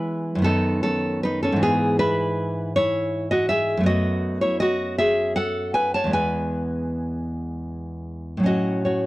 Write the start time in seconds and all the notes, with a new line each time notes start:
Already playing: E3 G#3 B3 E4 B4
0.35 F#2 D#3
0.42 B3 D#4 A4
0.83 C#4 A4
1.23 D#4 B4
1.43 C#4 A4
1.52 G#2 E3
1.63 B3 G#4
1.99 E4 B4
2.76 E4 C#5
3.31 F#4 D#5
3.49 G#4 E5
3.77 F#2 A3
3.83 B3 F#4 D#5
4.41 E4 C#5
4.60 F#4 D#5
4.98 G#4 E5
5.36 A4 F#5
5.74 B4 G#5
5.94 C#5 A5
6.04 E2 G#3
6.11 B3 B4 G#5
8.37 A2 F#3
8.43 C#4 F#4 D#5
8.85 F#4 C#5